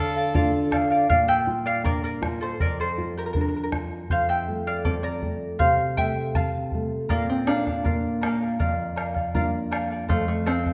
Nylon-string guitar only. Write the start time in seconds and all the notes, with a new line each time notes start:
Already playing: D3
0.34 A3 D4 F4
1.10 A#2
1.47 F4
1.84 D4
2.22 F4
2.60 F2
2.98 F4
3.36 D4
3.73 F4
4.10 F2
4.49 A3
4.86 C4
5.23 A3
5.60 C3
5.98 A3
6.36 C4
6.74 A3
7.11 A#2
7.85 A#3 D4 F4
8.61 F2
9.34 A#3 D4 F4
10.09 F2